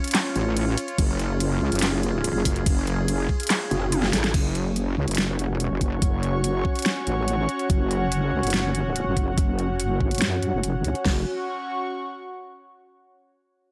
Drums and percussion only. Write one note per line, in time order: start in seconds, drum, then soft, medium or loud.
0.04 closed hi-hat medium
0.08 closed hi-hat medium
0.11 snare loud
0.11 clap medium
0.11 closed hi-hat medium
0.15 closed hi-hat medium
0.15 crash medium
0.36 closed hi-hat medium
0.57 closed hi-hat medium
0.57 crash medium
0.78 open hi-hat loud
0.88 closed hi-hat soft
0.98 kick loud
0.98 closed hi-hat medium
0.98 crash medium
1.19 closed hi-hat medium
1.40 closed hi-hat medium
1.40 crash soft
1.72 closed hi-hat medium
1.75 closed hi-hat medium
1.79 snare loud
1.79 clap medium
1.79 closed hi-hat medium
1.82 closed hi-hat medium
1.82 crash medium
2.03 closed hi-hat medium
2.24 closed hi-hat medium
2.24 crash medium
2.45 kick medium
2.45 open hi-hat loud
2.56 closed hi-hat soft
2.66 kick loud
2.66 closed hi-hat medium
2.66 crash medium
2.87 closed hi-hat medium
3.08 closed hi-hat medium
3.08 crash soft
3.29 kick medium
3.40 closed hi-hat medium
3.43 closed hi-hat medium
3.47 snare loud
3.47 clap medium
3.47 closed hi-hat medium
3.50 closed hi-hat medium
3.50 crash medium
3.71 closed hi-hat medium
3.92 closed hi-hat medium
3.92 high tom medium
3.92 crash soft
4.03 snare medium
4.13 snare medium
4.13 open hi-hat loud
4.24 snare medium
4.24 closed hi-hat soft
4.34 kick loud
4.34 closed hi-hat medium
4.34 crash medium
4.55 closed hi-hat medium
4.76 closed hi-hat medium
5.08 closed hi-hat medium
5.11 closed hi-hat medium
5.15 snare loud
5.15 closed hi-hat medium
5.18 closed hi-hat medium
5.39 closed hi-hat medium
5.60 closed hi-hat medium
5.81 kick medium
5.81 closed hi-hat medium
6.02 kick loud
6.02 closed hi-hat medium
6.23 closed hi-hat soft
6.44 closed hi-hat medium
6.65 kick medium
6.75 closed hi-hat soft
6.79 closed hi-hat medium
6.82 snare loud
6.82 closed hi-hat medium
6.86 closed hi-hat medium
7.07 closed hi-hat medium
7.28 closed hi-hat medium
7.49 closed hi-hat medium
7.59 closed hi-hat soft
7.70 kick loud
7.70 closed hi-hat medium
7.91 closed hi-hat soft
8.12 closed hi-hat medium
8.43 closed hi-hat soft
8.47 closed hi-hat medium
8.50 snare loud
8.50 closed hi-hat medium
8.54 closed hi-hat medium
8.75 closed hi-hat medium
8.96 closed hi-hat medium
9.17 kick medium
9.17 closed hi-hat medium
9.38 kick loud
9.38 closed hi-hat medium
9.59 closed hi-hat soft
9.80 closed hi-hat medium
10.01 kick medium
10.11 closed hi-hat soft
10.15 closed hi-hat medium
10.18 snare loud
10.18 closed hi-hat medium
10.22 closed hi-hat medium
10.43 closed hi-hat soft
10.63 closed hi-hat medium
10.84 closed hi-hat soft
10.95 closed hi-hat soft
11.05 kick loud
11.05 snare loud
11.05 crash medium